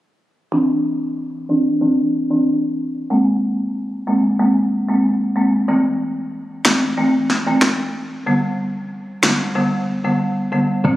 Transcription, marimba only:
0.52 E3 C4 D4
1.49 E3 C4 D4
1.81 E3 C4 D4
2.31 E3 C4 D4
3.10 G#3 A#3 C4
4.07 G#3 A#3 C4
4.39 G#3 A#3 C4
4.89 G#3 A#3 C4
5.36 G#3 A#3 C4
5.68 E3 A3 C4
6.65 E3 A3 C4
6.97 E3 A3 C4
7.47 E3 A3 C4
8.26 D3 G3 B3
9.23 D3 G3 B3
9.55 D3 G3 B3
10.04 D3 G3 B3
10.52 D3 G3 B3
10.84 D3 E3 C4

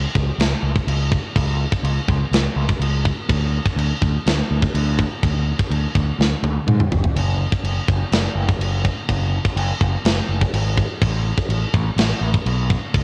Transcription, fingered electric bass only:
0.15 C#2
0.38 C#2
0.63 C#2
0.87 C#2
1.36 C#2
1.83 C#2
2.08 C#2
2.31 C#2
2.56 C#2
2.79 C#2
3.29 D2
3.76 D2
4.01 D2
4.26 D2
4.51 D2
4.74 D2
5.23 D2
5.70 D2
5.95 D2
6.19 D2
6.43 D2
6.67 G#2
6.91 F#1
7.16 F#1
7.63 F#1
7.88 F#1
8.12 F#1
8.35 F#1
8.59 F#1
9.09 F#1
9.56 F#1
9.81 F#1
10.05 F#1
10.29 F#1
10.53 G#1
11.01 A1
11.49 A1
11.74 A1
11.96 A1
12.21 A1
12.46 B1
12.94 C#2

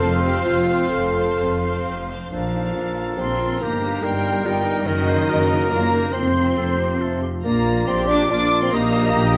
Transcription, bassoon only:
Already playing: F3
2.32 F3
3.18 C4
3.62 A#3
4.03 G3
4.45 G3
4.87 D#3
5.71 A#3
6.13 C4
7.44 A#3
7.87 C4
8.08 D4
8.30 D4
8.63 C4
8.72 A#3

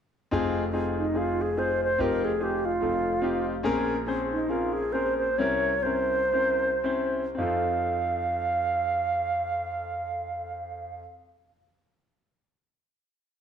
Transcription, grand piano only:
0.31 F1 F2 C4 D#4 F4 G#4
0.73 C4 D#4 F4 G#4
1.14 C4 D#4 F4 G#4
1.57 C4 D#4 F4 G#4
1.98 F1 F2 C4 D#4 F4 G4
2.39 C4 D#4 F4 G#4
2.81 F1 F2 C4 D#4 F4 A4
3.21 C4 D#4 F4 G4
3.63 A#1 A#2 C4 C#4 G#4 A#4
4.06 C4 C#4 G#4 C5
4.48 C4 C#4 G#4 A#4
4.93 C4 C#4 G#4 A#4
5.38 C2 C3 C4 C#4 E4 A#4
5.84 C4 C#4 E4 A#4
6.32 C4 C#4 E4 A#4
6.84 C4 C#4 E4 C5
7.35 F2 C4 D#4
7.40 F4 A4

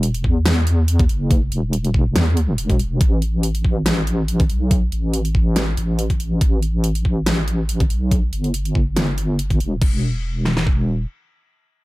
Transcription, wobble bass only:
Already playing: E1
0.24 E2
1.09 F#1
1.52 E1
2.16 E2
2.58 E1
3.01 A1
3.65 A1
4.50 B1
4.92 A1
5.77 A1
6.41 A1
7.05 A1
7.90 B1
8.33 G1
9.60 E1
9.82 E1

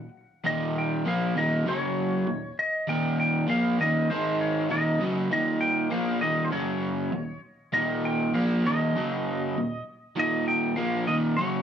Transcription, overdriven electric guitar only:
0.44 D#2 A#2 D#3
1.06 A#2 F3 A#3
1.36 D#2 A#2 D#3
1.66 F#2 C#3 F#3
2.27 D#2 A#2
2.88 D#2 A#2 D#3
3.47 A#2 F3 A#3
3.79 D#2 A#2 D#3
4.10 G#2 D#3 G#3
4.69 D#2 A#2 D#3
5.00 F#2 C#3 F#3
5.31 D#2 A#2 D#3
5.91 A#2 F3 A#3
6.21 D#2 A#2 D#3
6.51 F#2 C#3 F#3
7.13 D#2 A#2
7.73 D#2 A#2 D#3
8.34 A#2 F3 A#3
8.65 D#2 A#2 D#3
8.95 F#2 C#3 F#3
9.57 D#2 A#2
10.16 D#2 A#2 D#3
10.76 A#2 F3 A#3
11.07 D#2 A#2 D#3
11.38 F#2 C#3 F#3

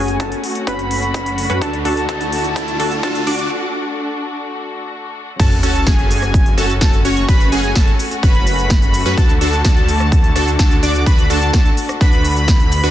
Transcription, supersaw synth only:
Already playing: C#4 F#4 G#4
0.20 C#4 F#4 A4
0.67 C#4 F#4 B4
1.50 C#4 F#4 B4
1.62 D4 F#4 A4
1.85 D4 F#4 A4
2.09 D4 F#4 A4
2.79 D4 F#4 A4
3.03 D4 F#4 A4
3.27 D4 F#4 D5
5.39 C#4 F#4 A4
5.63 C#4 F#4 A4
5.87 C#4 F#4 G#4
6.58 C#4 F#4 A4
6.81 C#4 F#4 A4
7.05 C#4 F#4 C#5
7.28 C#4 F#4 B4
7.52 C#4 F#4 G#4
7.76 C#4 F#4 A4
8.23 C#4 F#4 B4
9.06 C#4 F#4 B4
9.18 D4 F#4 A4
9.41 D4 F#4 A4
9.65 D4 F#4 A4
10.36 D4 F#4 A4
10.59 D4 F#4 A4
10.83 D4 F#4 D5
11.06 D4 F#4 B4
11.30 D4 F#4 A4
11.54 D4 F#4 A4
12.01 D4 F#4 B4
12.84 D4 F#4 B4

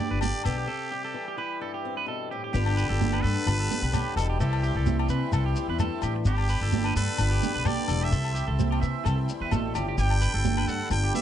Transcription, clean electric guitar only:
0.11 B4
0.21 G4
0.45 A4
0.58 G4
0.68 A4
0.92 G4
1.05 A4
1.28 G4
1.38 B4
1.62 A4
1.74 G4
1.97 B4
2.08 A4
2.31 G4
2.44 G4
2.54 G4
2.77 B4
2.89 A4
3.13 B4
3.23 A4
3.47 B4
3.60 A4
3.83 B4
3.93 G4
4.17 A4
4.29 G4
4.40 A4
4.63 G4
4.77 A4
5.00 G4
5.10 B4
5.34 A4
5.46 G4
5.70 B4
5.80 A4
6.03 G4
6.16 muted clean electric guitar stroke
6.27 G4
6.50 B4
6.62 A4
6.86 B4
6.96 A4
7.19 B4
7.31 G4
7.55 B4
7.65 G4
7.88 A4
8.01 G4
8.12 A4
8.35 G4
8.48 A4
8.71 G4
8.81 E5
9.05 A4
9.42 B4
9.52 A4
9.75 G4
9.88 G4
9.98 G4
10.21 B4
10.34 A4
10.58 B4
10.68 A4
10.91 muted clean electric guitar stroke
11.04 G4

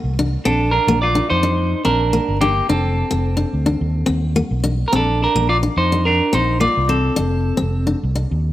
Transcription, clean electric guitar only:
0.45 D4 A4
0.71 D4 A#4
1.02 F4 D5
1.30 D#4 C5
1.85 D4 A#4
2.41 A#3 G4
2.69 C4 A4
4.88 A#4
4.96 D4 A4
5.22 D4 A#4
5.49 F4 D5
5.77 D#4 C5
6.05 D4 A#4
6.34 D#4 C5
6.60 F4 D5
6.89 C4 A4

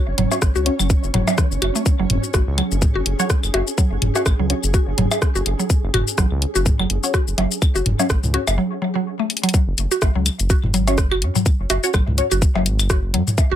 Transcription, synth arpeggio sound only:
0.18 F#3
0.56 F#4
0.79 F#3
1.14 F#3
1.27 F#3
1.38 E3
1.62 F#4
1.75 A3
2.00 F#3
2.34 F#4
2.58 F#3
2.95 F#4
3.19 F#3
3.54 F#4
3.78 F#3
4.15 F#4
4.39 F#3
4.74 F#4
4.98 F#3
5.35 F#4
5.59 F#3
5.94 F#4
6.18 F#3
6.55 F#4
6.79 F#3
7.14 F#4
7.38 F#3
7.75 F#4
7.99 F#3
8.34 F#4
8.58 F#3
8.82 F#3
8.95 F#3
9.19 A3
9.43 F#3
9.54 F#3
9.91 F#4
10.15 F#3
10.50 F#4
10.74 F#3
11.11 F#4
11.35 F#3
11.70 F#4
11.94 F#3
12.31 F#4
12.55 F#3
12.90 F#4
13.14 F#3
13.52 F#4

